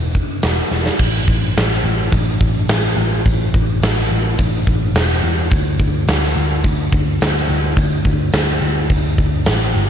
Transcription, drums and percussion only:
0.15 kick
0.42 snare, open hi-hat
0.71 snare
0.86 snare
0.99 kick, crash
1.28 kick
1.57 snare, open hi-hat
2.12 kick, open hi-hat
2.41 kick
2.68 snare, open hi-hat
3.26 kick, open hi-hat
3.54 kick
3.82 snare, open hi-hat
3.98 snare
4.39 kick, open hi-hat
4.67 kick
4.95 snare, open hi-hat
5.51 kick, open hi-hat
5.80 kick
6.08 snare, open hi-hat
6.23 snare
6.64 kick, open hi-hat
6.92 kick
7.21 snare, open hi-hat
7.77 kick, open hi-hat
8.05 kick
8.33 snare, open hi-hat
8.90 kick, open hi-hat
9.18 kick
9.45 snare, open hi-hat

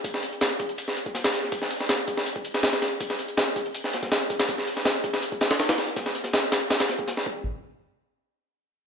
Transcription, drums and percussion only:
0.04 kick, closed hi-hat
0.14 snare
0.23 closed hi-hat
0.32 closed hi-hat
0.41 snare, closed hi-hat
0.59 kick, closed hi-hat
0.69 closed hi-hat
0.78 closed hi-hat
0.88 snare
0.96 closed hi-hat
1.06 kick, closed hi-hat
1.15 snare, closed hi-hat
1.24 snare
1.33 snare, closed hi-hat
1.43 snare
1.52 kick, closed hi-hat
1.62 snare
1.70 closed hi-hat, open hi-hat
1.80 snare
1.89 snare, closed hi-hat
1.99 closed hi-hat
2.07 kick, closed hi-hat
2.17 snare, closed hi-hat
2.26 closed hi-hat
2.36 kick, closed hi-hat
2.44 closed hi-hat
2.54 snare, closed hi-hat
2.63 snare, closed hi-hat
2.73 snare
2.82 snare, closed hi-hat
3.00 kick, closed hi-hat
3.10 snare
3.19 closed hi-hat
3.28 closed hi-hat
3.37 snare, closed hi-hat
3.56 kick, closed hi-hat
3.66 closed hi-hat
3.75 closed hi-hat
3.84 snare
3.93 snare, closed hi-hat
4.02 kick, snare, closed hi-hat
4.12 snare, closed hi-hat
4.21 closed hi-hat
4.30 kick, closed hi-hat
4.40 snare, closed hi-hat
4.48 kick, closed hi-hat
4.58 snare
4.67 closed hi-hat, open hi-hat
4.77 snare
4.85 snare, closed hi-hat
4.95 closed hi-hat
5.04 kick, closed hi-hat
5.14 snare, closed hi-hat
5.22 closed hi-hat
5.32 kick, closed hi-hat
5.41 snare, closed hi-hat
5.51 snare, closed hi-hat
5.59 snare, closed hi-hat
5.69 snare, closed hi-hat
5.78 snare, closed hi-hat
5.87 snare, closed hi-hat
5.96 kick, snare, closed hi-hat
6.06 snare
6.15 snare, closed hi-hat
6.24 snare, closed hi-hat
6.33 snare, closed hi-hat
6.52 snare, closed hi-hat
6.70 snare, closed hi-hat
6.80 snare, closed hi-hat
6.89 snare, closed hi-hat
6.98 kick, closed hi-hat
7.08 snare, closed hi-hat
7.17 snare, closed hi-hat
7.26 kick

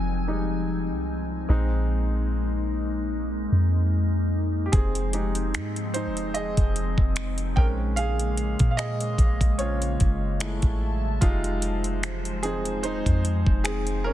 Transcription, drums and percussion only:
4.73 kick, closed hi-hat
4.95 closed hi-hat
5.13 closed hi-hat
5.35 closed hi-hat
5.54 finger snap, closed hi-hat
5.76 closed hi-hat
5.94 closed hi-hat
6.17 closed hi-hat
6.35 closed hi-hat
6.57 kick, closed hi-hat
6.76 closed hi-hat
6.98 kick
7.16 finger snap, closed hi-hat
7.38 closed hi-hat
7.57 kick
7.97 closed hi-hat
8.19 closed hi-hat
8.38 closed hi-hat
8.59 kick, closed hi-hat
8.79 finger snap, closed hi-hat
9.01 closed hi-hat
9.18 kick, closed hi-hat
9.41 kick, closed hi-hat
9.59 closed hi-hat
9.82 closed hi-hat
10.00 kick, closed hi-hat
10.40 finger snap, closed hi-hat
10.62 kick, closed hi-hat
11.22 kick, closed hi-hat
11.44 closed hi-hat
11.62 closed hi-hat
11.84 closed hi-hat
12.03 finger snap, closed hi-hat
12.25 closed hi-hat
12.43 closed hi-hat
12.65 closed hi-hat
12.84 closed hi-hat
13.06 kick, closed hi-hat
13.25 closed hi-hat
13.47 kick
13.65 finger snap, closed hi-hat
13.87 closed hi-hat

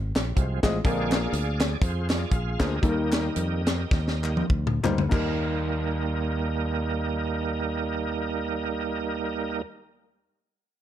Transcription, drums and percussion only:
0.16 snare, clap, closed hi-hat
0.37 kick, closed hi-hat
0.63 kick, snare, clap, closed hi-hat
0.85 kick, closed hi-hat
1.11 snare, clap, closed hi-hat
1.33 closed hi-hat
1.60 snare, clap, closed hi-hat
1.82 kick, closed hi-hat
2.10 snare, clap, closed hi-hat
2.32 kick, closed hi-hat
2.60 kick, snare, clap, closed hi-hat
2.83 kick, closed hi-hat
3.12 snare, clap, closed hi-hat
3.36 closed hi-hat
3.67 snare, clap, closed hi-hat
3.91 kick, snare
4.08 snare
4.24 clap
4.37 high tom
4.50 kick
4.67 mid tom
4.84 clap, floor tom
4.98 floor tom
5.12 kick, clap, crash

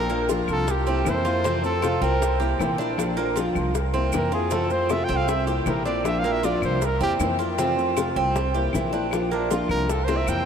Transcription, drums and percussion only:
0.10 maracas
0.29 high bongo, maracas
0.48 high bongo, claves, maracas
0.68 high bongo, maracas
0.87 high bongo, maracas
1.05 high bongo, low bongo, claves, maracas
1.26 high bongo, maracas
1.45 high bongo, maracas
1.64 maracas
1.82 high bongo, claves, maracas
2.03 high bongo, maracas
2.22 high bongo, maracas
2.41 high bongo, maracas
2.59 high bongo, low bongo, claves, maracas
2.79 high bongo, maracas
2.98 high bongo, claves, maracas
3.18 maracas
3.37 high bongo, maracas
3.55 high bongo, claves, maracas
3.75 high bongo, maracas
3.94 high bongo, maracas
4.12 high bongo, low bongo, claves, maracas
4.32 high bongo, maracas
4.51 high bongo, maracas
4.70 maracas
4.89 high bongo, claves, maracas
5.09 high bongo, maracas
5.28 high bongo, maracas
5.47 high bongo, maracas
5.66 high bongo, low bongo, claves, maracas
5.86 high bongo, maracas
6.04 high bongo, claves, maracas
6.25 maracas
6.44 high bongo, maracas
6.62 high bongo, claves, maracas
6.82 high bongo, maracas
7.01 high bongo, maracas
7.20 high bongo, low bongo, claves, maracas
7.40 high bongo, maracas
7.59 high bongo, maracas
7.79 maracas
7.97 high bongo, claves, maracas
8.16 high bongo, maracas
8.36 high bongo, maracas
8.55 high bongo, maracas
8.73 high bongo, low bongo, claves, maracas
8.93 high bongo, maracas
9.11 high bongo, claves, maracas
9.32 maracas
9.51 high bongo, maracas
9.69 high bongo, claves, maracas
9.90 high bongo, maracas
10.08 high bongo, maracas
10.27 claves, maracas

